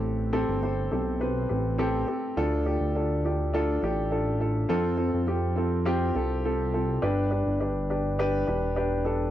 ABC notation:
X:1
M:4/4
L:1/16
Q:1/4=103
K:Ddor
V:1 name="Upright piano"
[CGA]2 [CGA]2 [CGc]2 [CGA]2 [CGB]2 [CGB]2 [CGA]2 [CGA]2 | [DFA]2 [DFG]2 [DFA]2 [DFG]2 [DFA]2 [DFG]2 [DFA]2 [DFA]2 | [CFA]2 [CFA]2 [CFG]2 [CFA]2 [CFG]2 [CFA]2 [CFA]2 [CFA]2 | [DGB]2 [DGB]2 [DGB]2 [DGB]2 [DGB]2 [DGB]2 [DGB]2 [DGA]2 |]
V:2 name="Upright piano" clef=bass
A,,4 z12 | D,6 z8 z2 | z16 | G,,6 z8 z2 |]
V:3 name="Analog synth bass" clef=bass
A,,,3 G,,,3 B,,,4 A,,,4 z2 | D,,3 D,,6- D,, A,,,6 | F,,3 F,,6- F,, C,,6 | G,,,3 G,,,6- G,,, E,,,6 |]